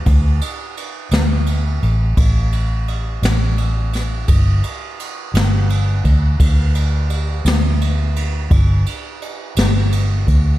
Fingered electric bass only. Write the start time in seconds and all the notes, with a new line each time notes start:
0.06 D2
1.12 D2
1.83 A1
2.17 A1
3.22 A1
4.28 G1
5.34 G1
6.04 D2
6.40 D2
7.45 D2
8.50 G1
9.57 G1
10.27 D2